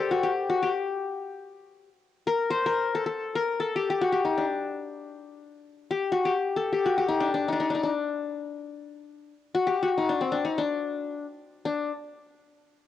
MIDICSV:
0, 0, Header, 1, 2, 480
1, 0, Start_track
1, 0, Tempo, 500000
1, 12360, End_track
2, 0, Start_track
2, 0, Title_t, "Qanun"
2, 0, Program_c, 0, 107
2, 0, Note_on_c, 0, 67, 70
2, 0, Note_on_c, 0, 69, 74
2, 0, Note_on_c, 0, 72, 77
2, 0, Note_on_c, 0, 74, 72
2, 106, Note_on_c, 0, 66, 72
2, 163, Note_off_c, 0, 67, 0
2, 223, Note_on_c, 0, 67, 69
2, 281, Note_off_c, 0, 66, 0
2, 476, Note_on_c, 0, 66, 74
2, 534, Note_off_c, 0, 67, 0
2, 590, Note_off_c, 0, 74, 0
2, 601, Note_on_c, 0, 67, 69
2, 659, Note_off_c, 0, 66, 0
2, 707, Note_off_c, 0, 72, 0
2, 991, Note_off_c, 0, 69, 0
2, 1806, Note_off_c, 0, 67, 0
2, 2179, Note_on_c, 0, 70, 84
2, 2404, Note_on_c, 0, 72, 87
2, 2549, Note_off_c, 0, 70, 0
2, 2553, Note_on_c, 0, 70, 81
2, 2829, Note_on_c, 0, 69, 75
2, 2887, Note_off_c, 0, 70, 0
2, 2934, Note_off_c, 0, 69, 0
2, 2938, Note_on_c, 0, 69, 74
2, 3219, Note_on_c, 0, 70, 77
2, 3277, Note_off_c, 0, 69, 0
2, 3417, Note_off_c, 0, 72, 0
2, 3454, Note_on_c, 0, 69, 72
2, 3512, Note_off_c, 0, 70, 0
2, 3606, Note_on_c, 0, 67, 73
2, 3739, Note_off_c, 0, 67, 0
2, 3742, Note_on_c, 0, 67, 73
2, 3852, Note_on_c, 0, 66, 72
2, 3910, Note_off_c, 0, 67, 0
2, 3958, Note_on_c, 0, 67, 72
2, 4015, Note_off_c, 0, 66, 0
2, 4076, Note_on_c, 0, 63, 62
2, 4200, Note_on_c, 0, 62, 63
2, 4258, Note_off_c, 0, 63, 0
2, 4579, Note_off_c, 0, 69, 0
2, 5163, Note_off_c, 0, 67, 0
2, 5633, Note_off_c, 0, 62, 0
2, 5670, Note_on_c, 0, 67, 72
2, 5873, Note_on_c, 0, 66, 73
2, 5930, Note_off_c, 0, 67, 0
2, 6000, Note_on_c, 0, 67, 74
2, 6058, Note_off_c, 0, 66, 0
2, 6299, Note_on_c, 0, 69, 76
2, 6451, Note_off_c, 0, 67, 0
2, 6455, Note_on_c, 0, 67, 76
2, 6581, Note_on_c, 0, 66, 78
2, 6639, Note_off_c, 0, 67, 0
2, 6698, Note_on_c, 0, 67, 79
2, 6756, Note_off_c, 0, 66, 0
2, 6800, Note_on_c, 0, 63, 71
2, 6915, Note_on_c, 0, 62, 73
2, 6972, Note_off_c, 0, 63, 0
2, 7042, Note_off_c, 0, 62, 0
2, 7046, Note_on_c, 0, 62, 71
2, 7182, Note_on_c, 0, 63, 65
2, 7219, Note_off_c, 0, 62, 0
2, 7223, Note_on_c, 0, 62, 64
2, 7281, Note_off_c, 0, 63, 0
2, 7294, Note_on_c, 0, 63, 70
2, 7351, Note_off_c, 0, 62, 0
2, 7391, Note_on_c, 0, 62, 66
2, 7424, Note_off_c, 0, 69, 0
2, 7432, Note_off_c, 0, 63, 0
2, 7436, Note_on_c, 0, 63, 52
2, 7494, Note_off_c, 0, 62, 0
2, 7519, Note_on_c, 0, 62, 65
2, 7577, Note_off_c, 0, 63, 0
2, 7903, Note_off_c, 0, 67, 0
2, 8952, Note_off_c, 0, 62, 0
2, 9165, Note_on_c, 0, 66, 77
2, 9282, Note_on_c, 0, 67, 79
2, 9339, Note_off_c, 0, 66, 0
2, 9434, Note_on_c, 0, 66, 76
2, 9491, Note_off_c, 0, 67, 0
2, 9578, Note_on_c, 0, 63, 75
2, 9687, Note_on_c, 0, 62, 73
2, 9697, Note_off_c, 0, 63, 0
2, 9800, Note_off_c, 0, 62, 0
2, 9800, Note_on_c, 0, 60, 69
2, 9905, Note_on_c, 0, 62, 72
2, 9910, Note_off_c, 0, 60, 0
2, 10026, Note_off_c, 0, 62, 0
2, 10030, Note_on_c, 0, 63, 70
2, 10157, Note_on_c, 0, 62, 68
2, 10165, Note_off_c, 0, 63, 0
2, 10686, Note_off_c, 0, 66, 0
2, 10794, Note_off_c, 0, 62, 0
2, 11186, Note_on_c, 0, 62, 73
2, 11423, Note_off_c, 0, 62, 0
2, 12360, End_track
0, 0, End_of_file